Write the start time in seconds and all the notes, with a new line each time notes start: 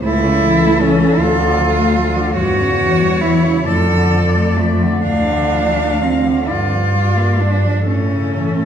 0.02 C#2 A2 E4 A4
0.22 C#3
0.41 E3
0.61 A3
0.81 E3 C#4
1.00 C#3
1.18 D2 A2 F4
1.37 D3
1.58 F3
1.78 A3
1.96 F3
2.16 D3
2.34 E2 G2 F#4 C#5
2.58 C#3
2.79 E3
3.01 G3
3.21 E3 E4
3.46 C#3
3.65 F2 A2 A4 D5
3.88 D3
4.10 F3
4.35 A3
4.57 F3 A3
4.82 D3
5.02 D2 A2 D4 F5
5.29 D3
5.52 F3
5.77 A3
6.02 F3 C4
6.25 D3
6.47 G2 D3 F4 D5
6.71 F3
6.94 G3
7.17 A#3
7.38 G3 D4
7.63 F3
7.84 A2 C#4 A4
8.10 C#3
8.33 E3
8.55 A3